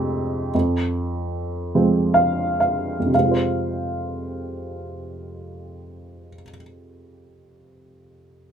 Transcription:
0.00 0.51 F2 medium
0.00 0.57 C3 soft
0.00 0.50 G#3 soft
0.00 0.56 C4 medium
0.55 2.98 F2 soft
1.75 3.11 F3 soft
1.75 3.10 G#3 soft
1.75 3.12 C4 soft
2.14 2.59 F5 medium
2.60 3.09 F5 soft
3.00 6.29 F2 soft
3.06 6.35 C3 soft
3.12 6.41 G#3 soft
3.12 6.43 F5 soft
3.19 6.48 C4 soft
3.25 6.54 F4 soft
3.31 6.61 C5 soft

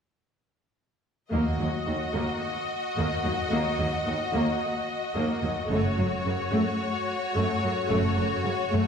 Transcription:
1.31 1.40 D#2 soft
1.31 1.58 D#2 soft
1.31 1.57 A#3 soft
1.31 5.66 F#4 soft
1.31 5.66 D#5 soft
1.60 1.68 D#2 soft
1.60 1.68 F#3 soft
1.87 1.95 D#2 soft
1.87 1.95 D#3 soft
2.14 2.22 D#2 soft
2.14 2.40 A#3 soft
2.97 3.05 D#2 soft
2.97 3.22 A#3 soft
3.24 3.33 D#2 soft
3.24 3.32 F#3 soft
3.51 3.77 D#2 soft
3.51 3.60 D#2 soft
3.51 3.77 A#3 soft
3.78 3.86 D#2 soft
3.78 3.88 F#3 soft
4.06 4.14 D#2 soft
4.06 4.15 D#3 soft
4.33 4.41 D#2 soft
4.33 4.59 A#3 soft
5.15 5.23 D#2 soft
5.15 5.41 A#3 soft
5.43 5.51 D#2 soft
5.43 5.51 F#3 soft
5.70 5.96 F#1 medium
5.70 5.78 F#2 soft
5.70 5.96 A3 medium
5.70 8.87 F#4 soft
5.70 8.87 C#5 soft
5.98 6.06 F#2 soft
5.98 6.06 F#3 soft
6.25 6.33 F#2 soft
6.25 6.33 C#3 soft
6.52 6.60 F#2 medium
6.52 6.78 A3 soft
7.34 7.43 F#2 medium
7.34 7.60 A3 soft
7.62 7.71 F#2 soft
7.62 7.70 F#3 soft
7.89 8.16 F#1 medium
7.89 7.99 F#2 medium
7.89 8.15 A3 medium
8.16 8.26 F#2 soft
8.16 8.24 F#3 soft
8.44 8.54 F#2 soft
8.44 8.52 C#3 soft
8.71 8.81 F#2 medium
8.71 8.87 A3 medium

